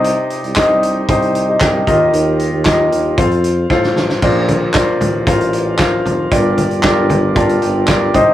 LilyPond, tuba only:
\new Staff \with { instrumentName = "Tuba" } { \clef bass \time 4/4 \key bes \major \tempo 4 = 115 c,16 r8 c,16 c,4 c,4 c,8 ees,8 | ees,8. ees,8. ees,8 f,4 a,8 a,,8 | bes,,4 r8 a,,2 f,,8 | g,,8. g,,16 g,,4. g,,4 c,8 | }